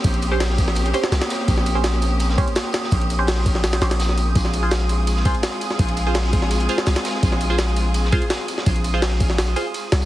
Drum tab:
RD |xxx-x-x-xxx-xxx-|x-x-x-x-x-xxx-x-|xxx-x-x-xxxxx-x-|x-x-x-x-x-xxx-x-|
HH |----o----x------|-----x----------|----o----x------|-----x----------|
TB |x-x---x-x-x-x-x-|x-x-x-x-x-x-x-x-|x-x---x-x-x-x-x-|x-x-x-x-x-x-x-x-|
SD |----o--o---ooooo|-o--o----o--o-oo|----o--ooooooo--|-o--o----o--o--o|
BD |o-----o---------|o---------o-----|o-----o---------|o---------o-----|

RD |xxx-x-x-xxx-xxx-|x-x-x-x-x-xxx-x-|xxx-x-x-x-x-x-x-|
HH |----o----x------|-----x----------|----o----x------|
TB |x-x---x-x-x-x-x-|x-x-x-x-x---x-x-|x-x---x-x-x-x-xx|
SD |----o--o---ooooo|-o--o----o--o--o|----o--oo-----o-|
BD |o-----o---------|o---------o-----|o-----o---------|